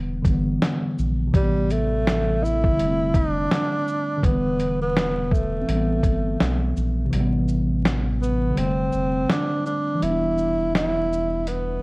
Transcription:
0.00 0.22 E1 loud
0.00 0.18 D3 medium
0.00 0.21 E3 medium
0.00 0.26 G3 medium
0.00 0.26 B3 medium
0.23 0.58 G1 medium
0.23 1.32 D3 medium
0.23 1.31 E3 medium
0.23 kick medium
0.23 closed hi-hat soft
0.23 shaker soft
0.28 1.35 G3 medium
0.28 1.36 B3 medium
0.62 snare loud
0.62 closed hi-hat medium
0.99 1.31 A#1 medium
0.99 shaker soft
1.27 2.72 C3 medium
1.32 2.75 A1 medium
1.32 2.75 E3 medium
1.32 1.73 G3 medium
1.32 kick loud
1.32 closed hi-hat medium
1.37 2.76 G3 medium
1.42 2.80 B3 medium
1.70 2.45 A3 loud
1.70 closed hi-hat soft
1.70 shaker soft
2.07 snare loud
2.07 closed hi-hat medium
2.43 3.17 E4 loud
2.43 shaker medium
2.64 kick medium
2.72 4.16 D3 medium
2.77 3.12 F1 medium
2.77 4.19 G3 medium
2.77 closed hi-hat medium
2.82 4.22 A3 medium
2.87 4.24 C4 medium
3.14 3.47 F1 medium
3.14 4.26 D4 loud
3.14 kick medium
3.14 closed hi-hat soft
3.14 shaker medium
3.51 snare loud
3.51 closed hi-hat medium
3.88 shaker soft
4.17 5.62 D3 medium
4.22 5.64 E1 loud
4.22 5.64 E3 medium
4.22 4.81 B3 medium
4.22 kick loud
4.22 closed hi-hat medium
4.27 5.67 G3 medium
4.32 5.69 B3 medium
4.60 closed hi-hat soft
4.60 shaker soft
4.82 5.34 B3 loud
4.97 snare loud
4.97 closed hi-hat medium
5.31 6.76 A3 medium
5.31 kick medium
5.31 shaker medium
5.61 7.06 C4 medium
5.66 6.01 A1 loud
5.66 7.08 E3 medium
5.66 closed hi-hat medium
5.71 7.11 G3 medium
5.76 7.13 B3 medium
6.03 6.37 G1 medium
6.03 kick medium
6.03 closed hi-hat medium
6.03 shaker soft
6.40 6.73 B1 medium
6.40 snare loud
6.40 closed hi-hat medium
6.77 7.09 A#1 medium
6.77 shaker soft
7.06 8.50 C3 medium
7.11 8.53 A1 loud
7.11 8.53 E3 medium
7.11 closed hi-hat medium
7.16 8.54 G3 medium
7.21 8.58 B3 medium
7.49 shaker soft
7.85 snare loud
7.85 closed hi-hat medium
8.21 8.59 B3 medium
8.21 shaker medium
8.50 9.95 D3 medium
8.55 8.90 F1 loud
8.55 9.98 G3 medium
8.55 9.32 C4 medium
8.55 closed hi-hat medium
8.60 10.00 A3 medium
8.65 10.03 C4 medium
8.93 9.26 F1 medium
8.93 shaker medium
9.30 9.66 D4 loud
9.30 snare loud
9.30 closed hi-hat medium
9.66 10.04 D4 medium
9.66 shaker soft
9.95 11.82 E3 medium
10.00 11.78 E1 loud
10.00 11.82 G3 medium
10.00 10.74 E4 loud
10.00 closed hi-hat medium
10.05 11.82 B3 medium
10.10 11.82 D4 medium
10.38 shaker soft
10.75 11.49 E4 loud
10.75 snare loud
10.75 closed hi-hat medium
11.13 shaker medium
11.47 11.82 B3 medium
11.47 closed hi-hat medium

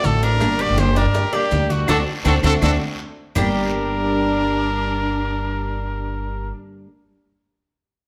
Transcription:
0.00 0.39 D3 soft
0.00 0.40 A3 medium
0.00 0.21 F#4 medium
0.00 high conga medium
0.00 maracas medium
0.04 0.39 A1 loud
0.04 0.22 C4 medium
0.04 0.40 C4 medium
0.04 0.41 F#4 medium
0.04 0.26 A4 medium
0.04 high bongo soft
0.04 low bongo medium
0.04 short guiro medium
0.22 0.59 D4 medium
0.22 0.58 D4 medium
0.22 0.63 A#4 loud
0.22 high bongo soft
0.22 short guiro medium
0.22 maracas soft
0.40 0.67 G1 medium
0.40 0.77 D3 medium
0.40 0.76 G3 medium
0.40 0.77 A#3 medium
0.40 0.77 D4 medium
0.40 0.78 G4 medium
0.40 high bongo medium
0.40 high conga soft
0.40 long guiro medium
0.40 claves medium
0.40 maracas medium
0.59 0.78 F#4 medium
0.59 0.95 G4 medium
0.59 0.81 D5 loud
0.59 high bongo soft
0.59 high conga soft
0.59 maracas soft
0.69 1.04 F#1 loud
0.77 0.95 G3 medium
0.77 0.95 A#3 medium
0.77 0.95 D4 medium
0.77 0.96 G4 medium
0.77 0.94 G4 medium
0.77 0.99 C5 medium
0.77 high bongo medium
0.77 high conga loud
0.77 short guiro medium
0.77 claves medium
0.77 maracas medium
0.95 1.13 G3 medium
0.95 1.13 A#3 medium
0.95 1.33 D4 medium
0.95 1.13 D4 medium
0.95 1.14 D4 medium
0.95 1.13 G4 medium
0.95 1.36 A#4 loud
0.95 high conga soft
0.95 short guiro medium
0.95 maracas soft
1.06 1.23 G2 medium
1.14 1.32 G4 medium
1.14 muted steel-string acoustic guitar stroke medium
1.14 high bongo medium
1.14 high conga soft
1.14 long guiro medium
1.14 maracas medium
1.32 1.50 G3 medium
1.32 1.70 A#3 medium
1.32 1.50 A#3 medium
1.32 1.51 D4 medium
1.32 1.50 G4 medium
1.32 1.72 G4 medium
1.32 1.69 D5 medium
1.32 high bongo soft
1.32 high conga soft
1.32 claves medium
1.32 maracas soft
1.51 1.87 D2 loud
1.51 1.87 G3 medium
1.51 1.88 A#3 medium
1.51 1.87 D4 medium
1.51 1.88 G4 medium
1.51 high bongo soft
1.51 low bongo medium
1.51 high conga medium
1.51 short guiro medium
1.51 maracas medium
1.70 1.88 A3 medium
1.70 1.88 F#4 medium
1.70 1.89 F#4 medium
1.70 high bongo soft
1.70 high conga medium
1.70 short guiro medium
1.70 maracas soft
1.88 2.02 D2 medium
1.88 2.00 A3 medium
1.88 2.00 C4 loud
1.88 2.00 D4 loud
1.88 2.00 D4 medium
1.88 2.00 F#4 loud
1.88 2.00 A4 medium
1.88 1.98 A4 loud
1.88 low bongo loud
1.88 high conga loud
1.88 long guiro loud
1.88 claves loud
1.88 maracas loud
2.25 2.39 D2 medium
2.25 2.37 A3 loud
2.25 2.37 C4 loud
2.25 2.37 C4 medium
2.25 2.37 D4 medium
2.25 2.37 D4 loud
2.25 2.37 D4 medium
2.25 2.37 F#4 loud
2.25 2.37 A4 medium
2.25 2.35 A4 medium
2.25 low bongo loud
2.25 high conga loud
2.25 long guiro loud
2.25 claves loud
2.25 maracas medium
2.43 2.57 D2 medium
2.43 2.56 A3 medium
2.43 2.56 C4 medium
2.43 2.56 C4 loud
2.43 2.56 D4 medium
2.43 2.56 D4 loud
2.43 2.56 D4 medium
2.43 2.56 F#4 loud
2.43 2.56 F#4 medium
2.43 2.56 A4 loud
2.43 2.54 A4 loud
2.43 low bongo loud
2.43 high conga medium
2.43 long guiro medium
2.43 claves medium
2.43 maracas loud
2.62 2.76 D2 loud
2.62 2.74 A3 medium
2.62 2.74 C4 medium
2.62 2.74 D4 loud
2.62 2.74 D4 medium
2.62 2.74 D4 loud
2.62 2.74 F#4 loud
2.62 2.74 F#4 medium
2.62 2.74 A4 medium
2.62 2.72 A4 medium
2.62 low bongo loud
2.62 high conga loud
2.62 long guiro loud
2.62 claves loud
2.62 maracas loud
3.35 6.50 G1 medium
3.35 6.86 G2 medium
3.35 6.86 D3 medium
3.35 6.49 G3 medium
3.35 6.87 G3 medium
3.35 6.87 A#3 medium
3.35 6.50 D4 medium
3.35 6.88 D4 medium
3.35 6.50 G4 loud
3.35 6.88 G4 medium
3.35 6.52 A#4 medium
3.35 low bongo medium
3.35 low conga loud
3.35 long guiro loud
3.35 claves loud
3.35 maracas loud

